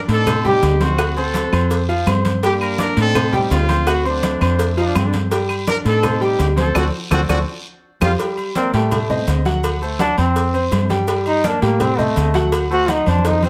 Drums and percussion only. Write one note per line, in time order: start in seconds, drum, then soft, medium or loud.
0.08 cowbell medium
0.08 low agogo medium
0.08 short guiro medium
0.08 maracas soft
0.26 cowbell loud
0.26 high conga soft
0.26 low conga medium
0.26 low agogo loud
0.26 long guiro medium
0.26 claves medium
0.26 maracas medium
0.45 high conga soft
0.45 low conga medium
0.45 maracas soft
0.62 cowbell medium
0.62 high conga soft
0.62 low timbale medium
0.62 low agogo medium
0.62 short guiro medium
0.62 maracas medium
0.80 cowbell medium
0.80 high conga medium
0.80 short guiro medium
0.80 maracas soft
0.98 cowbell loud
0.98 high conga soft
0.98 low agogo loud
0.98 long guiro medium
0.98 claves medium
0.98 maracas medium
1.16 high conga soft
1.16 maracas soft
1.34 cowbell medium
1.34 high conga loud
1.34 low timbale medium
1.34 low agogo medium
1.34 short guiro medium
1.34 maracas medium
1.52 high conga soft
1.52 low agogo loud
1.52 short guiro medium
1.52 claves medium
1.52 maracas soft
1.70 cowbell loud
1.70 high conga soft
1.70 long guiro medium
1.70 maracas medium
1.89 high conga soft
1.89 low agogo medium
1.89 maracas soft
2.06 cowbell medium
2.06 high conga medium
2.06 low timbale medium
2.06 low agogo loud
2.06 short guiro medium
2.06 claves medium
2.06 maracas medium
2.25 cowbell medium
2.25 high conga medium
2.25 short guiro medium
2.25 maracas soft
2.43 cowbell loud
2.43 high conga soft
2.43 low agogo medium
2.43 long guiro medium
2.43 maracas medium
2.60 high conga soft
2.60 low agogo loud
2.60 claves medium
2.60 maracas soft
2.78 cowbell medium
2.78 high conga loud
2.78 low timbale medium
2.78 short guiro medium
2.78 maracas medium
2.97 cowbell medium
2.97 low agogo medium
2.97 short guiro medium
2.97 maracas soft
3.15 cowbell loud
3.15 high conga soft
3.15 low conga medium
3.15 low agogo loud
3.15 long guiro medium
3.15 claves medium
3.15 maracas medium
3.33 high conga soft
3.33 low conga medium
3.33 maracas soft
3.51 cowbell medium
3.51 high conga soft
3.51 low timbale medium
3.51 low agogo medium
3.51 short guiro medium
3.51 maracas medium
3.69 cowbell medium
3.69 high conga medium
3.69 short guiro medium
3.69 maracas soft
3.86 cowbell loud
3.86 high conga soft
3.86 low agogo loud
3.86 long guiro medium
3.86 claves medium
3.86 maracas medium
4.05 high conga soft
4.05 maracas soft
4.23 cowbell medium
4.23 high conga loud
4.23 low timbale medium
4.23 low agogo medium
4.23 short guiro medium
4.23 maracas medium
4.41 high conga soft
4.41 low agogo loud
4.41 short guiro medium
4.41 claves medium
4.41 maracas soft
4.59 cowbell loud
4.59 high conga soft
4.59 long guiro medium
4.59 maracas medium
4.77 high conga soft
4.77 low agogo medium
4.77 maracas soft
4.95 cowbell medium
4.95 high conga medium
4.95 low timbale medium
4.95 low agogo loud
4.95 short guiro medium
4.95 claves medium
4.95 maracas medium
5.13 cowbell medium
5.13 high conga medium
5.13 short guiro medium
5.13 maracas soft
5.31 cowbell loud
5.31 high conga soft
5.31 low agogo medium
5.31 long guiro medium
5.31 maracas medium
5.49 high conga soft
5.49 low agogo loud
5.49 claves medium
5.49 maracas soft
5.67 cowbell medium
5.67 high conga loud
5.67 low timbale medium
5.67 short guiro medium
5.67 maracas medium
5.85 cowbell medium
5.85 low agogo medium
5.85 short guiro medium
5.85 maracas soft
6.03 cowbell loud
6.03 high conga soft
6.03 low conga medium
6.03 low agogo loud
6.03 long guiro medium
6.03 claves medium
6.03 maracas medium
6.21 high conga soft
6.21 maracas soft
6.39 cowbell medium
6.39 high conga soft
6.39 low timbale medium
6.39 low agogo medium
6.39 short guiro medium
6.39 maracas medium
6.57 cowbell medium
6.57 high conga medium
6.57 short guiro medium
6.57 maracas soft
6.75 cowbell loud
6.75 high conga loud
6.75 high timbale loud
6.75 long guiro loud
6.75 claves loud
6.75 maracas loud
7.11 cowbell loud
7.11 high conga loud
7.11 high timbale loud
7.11 claves loud
7.11 maracas loud
7.29 cowbell loud
7.29 high conga loud
7.29 high timbale medium
7.29 claves medium
7.29 maracas loud
8.01 cowbell loud
8.01 high conga loud
8.01 high timbale loud
8.01 long guiro loud
8.01 claves loud
8.01 maracas loud
8.19 cowbell loud
8.19 high conga soft
8.19 low agogo medium
8.19 long guiro medium
8.19 maracas medium
8.37 high conga soft
8.37 low agogo loud
8.37 maracas soft
8.55 cowbell medium
8.55 high conga medium
8.55 low timbale medium
8.55 short guiro medium
8.55 maracas medium
8.74 cowbell medium
8.74 low agogo medium
8.74 short guiro medium
8.74 maracas soft
8.91 cowbell loud
8.91 high conga soft
8.91 low conga medium
8.91 low agogo loud
8.91 long guiro medium
8.91 maracas medium
9.10 high conga soft
9.10 low conga medium
9.10 maracas soft
9.27 cowbell medium
9.27 high conga soft
9.27 low timbale medium
9.27 low agogo medium
9.27 short guiro medium
9.27 maracas medium
9.45 cowbell medium
9.45 high conga medium
9.45 short guiro medium
9.45 maracas soft
9.64 cowbell loud
9.64 low agogo loud
9.64 long guiro medium
9.64 maracas medium
9.81 high conga soft
9.81 maracas soft
9.99 cowbell medium
9.99 high conga loud
9.99 low timbale medium
9.99 low agogo medium
9.99 short guiro medium
9.99 maracas medium
10.18 low agogo loud
10.18 short guiro medium
10.18 maracas soft
10.36 cowbell loud
10.36 high conga soft
10.36 long guiro medium
10.36 maracas medium
10.54 high conga soft
10.54 low agogo medium
10.54 maracas soft
10.71 cowbell medium
10.71 high conga medium
10.71 low timbale medium
10.71 low agogo loud
10.71 short guiro medium
10.71 maracas medium
10.90 cowbell medium
10.90 high conga medium
10.90 short guiro medium
10.90 maracas soft
11.08 cowbell loud
11.08 high conga soft
11.08 low agogo medium
11.08 long guiro medium
11.08 maracas medium
11.26 high conga soft
11.26 low agogo loud
11.26 maracas soft
11.44 cowbell medium
11.44 high conga loud
11.44 low timbale medium
11.44 short guiro medium
11.44 maracas medium
11.62 cowbell medium
11.62 low agogo medium
11.62 short guiro medium
11.62 maracas soft
11.80 cowbell loud
11.80 high conga soft
11.80 low conga medium
11.80 low agogo loud
11.80 long guiro medium
11.80 maracas medium
11.99 high conga soft
11.99 low conga medium
11.99 maracas soft
12.16 cowbell medium
12.16 high conga soft
12.16 low timbale medium
12.16 low agogo medium
12.16 short guiro medium
12.16 maracas medium
12.34 cowbell medium
12.34 high conga medium
12.34 short guiro medium
12.34 maracas soft
12.52 cowbell loud
12.52 high conga soft
12.52 low agogo loud
12.52 long guiro medium
12.52 maracas medium
12.70 high conga soft
12.70 maracas soft
12.88 cowbell medium
12.88 high conga loud
12.88 low timbale medium
12.88 low agogo medium
12.88 short guiro medium
12.88 maracas medium
13.06 high conga medium
13.06 low agogo loud
13.06 short guiro medium
13.06 maracas soft
13.18 high conga medium
13.24 cowbell loud
13.24 high timbale medium
13.24 long guiro medium
13.24 maracas medium
13.31 high conga medium
13.42 high conga medium
13.42 high timbale medium
13.42 low agogo medium
13.42 maracas soft